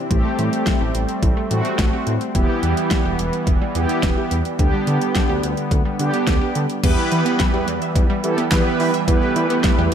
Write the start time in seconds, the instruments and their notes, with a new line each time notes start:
Already playing: analog synth pad C4
0.11 analog synth bass A1, synth pluck E3, analog synth pad G3 A3, analog polysynth A3 C4 G4, kick, closed hi-hat
0.25 synth pluck A3
0.39 analog synth bass A2, synth pluck E3, closed hi-hat
0.53 closed hi-hat
0.67 synth pluck E3, kick, snare, closed hi-hat
0.81 analog synth bass A1, synth pluck G4
0.95 analog synth bass A1, closed hi-hat
1.09 closed hi-hat
1.23 analog synth bass A1, synth pluck E3, kick, closed hi-hat
1.37 synth pluck A3
1.51 analog synth bass A2, synth pluck E3, analog polysynth A3 C4 F#4, closed hi-hat
1.65 synth pluck C4, closed hi-hat
1.79 analog synth bass A1, synth pluck E3, kick, snare, closed hi-hat
1.93 synth pluck G4
2.07 analog synth bass A2, synth pluck E3, closed hi-hat
2.21 closed hi-hat
2.35 analog synth bass E1, analog synth pad E3 G3 B3, synth pluck E3, analog polysynth B3 E4 G4, kick, closed hi-hat
2.49 synth pluck G3
2.63 analog synth bass E2, synth pluck E3, closed hi-hat
2.77 closed hi-hat
2.91 synth pluck E3, kick, snare, closed hi-hat
3.05 analog synth bass E1, synth pluck G4
3.19 analog synth bass E1, closed hi-hat
3.33 closed hi-hat
3.47 analog synth bass E1, synth pluck E3, kick, closed hi-hat
3.62 synth pluck G3
3.75 analog synth bass E2, synth pluck E3, analog polysynth B3 E4 G4, closed hi-hat
3.89 synth pluck B3, closed hi-hat
4.03 analog synth bass E1, synth pluck E3, kick, snare, closed hi-hat
4.18 synth pluck G4
4.31 analog synth bass E2, synth pluck E3, closed hi-hat
4.45 closed hi-hat
4.59 analog synth bass D2, synth pluck D3, analog synth pad D3 B3, analog polysynth B3 D4 G4, kick, closed hi-hat
4.74 synth pluck G3
4.87 analog synth bass D3, synth pluck D3, closed hi-hat
5.01 closed hi-hat
5.15 synth pluck D3, kick, snare, closed hi-hat
5.29 analog synth bass D2, synth pluck G4
5.43 analog synth bass D2, closed hi-hat
5.57 closed hi-hat
5.71 analog synth bass D2, synth pluck D3, kick, closed hi-hat
5.85 synth pluck G3
5.99 synth pluck D3, analog synth bass D3, analog polysynth B3 D4 G4, closed hi-hat
6.13 synth pluck B3, closed hi-hat
6.27 analog synth bass D2, synth pluck D3, kick, snare, closed hi-hat
6.41 synth pluck G4
6.55 synth pluck D3, analog synth bass D3, closed hi-hat
6.70 closed hi-hat
6.83 analog synth bass E2, analog synth pad E3 G3 B3, synth pluck E3, analog polysynth B3 E4 G4 B4, kick, closed hi-hat, crash
7.12 synth pluck E3, analog synth bass E3, closed hi-hat
7.26 synth pluck B3, closed hi-hat
7.39 synth pluck E3, kick, snare, closed hi-hat
7.54 analog synth bass E2, synth pluck G4
7.68 analog synth bass E2, synth pluck E3, closed hi-hat
7.82 synth pluck E5, closed hi-hat
7.96 analog synth bass E2, synth pluck E3, kick, closed hi-hat
8.10 synth pluck G3
8.24 analog synth bass E3, analog polysynth B3 E4 G4 A4, closed hi-hat
8.38 synth pluck B3, closed hi-hat
8.52 analog synth bass E2, synth pluck E3, analog polysynth B3 E4 G4 B4, kick, snare, clap, closed hi-hat
8.80 synth pluck E3, analog synth bass E3, open hi-hat
8.94 synth pluck E5, closed hi-hat
9.08 analog synth bass E2, synth pluck E3, analog synth pad A3, analog polysynth B3 E4 G4 B4, kick, closed hi-hat
9.36 analog synth bass E3, synth pluck E3, closed hi-hat
9.50 synth pluck B3, closed hi-hat
9.64 synth pluck E3, kick, snare, closed hi-hat
9.78 analog synth bass E2, synth pluck G4